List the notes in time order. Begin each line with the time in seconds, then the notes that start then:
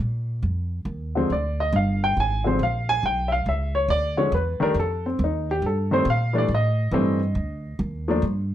0.00 A#2
0.43 F2
0.85 D#2
1.15 D3 F3 G#3 C4
1.30 D2 D5
1.60 D#5
1.73 G1 F5
2.04 G5
2.17 G#1 G#5
2.44 D3 F3 G#3 C4 C5
2.59 A#1 F5
2.89 G#5
3.03 B1 G5
3.28 E5
3.32 F5
3.46 C#2 E5
3.75 C#5
3.88 D2 D5
4.17 D3 F3 G#3 C#4 C#5
4.32 E2 B4
4.60 D#3 G3 A3 D4 A#4, muted upright bass stroke
4.74 F2
4.80 A4
5.06 C4
5.19 D#2
5.24 D#4
5.51 G4
5.62 G2
5.66 A4
5.91 D#3 G3 A3 C4 C5
6.05 A#2
6.10 F5
6.33 E3 G3 A3 D4
6.38 D5
6.48 A2
6.55 D#5
6.91 G2 E3 G3 A3 C4
7.35 D2
7.79 D#2
8.08 F3 A3 A#3 D4
8.22 G2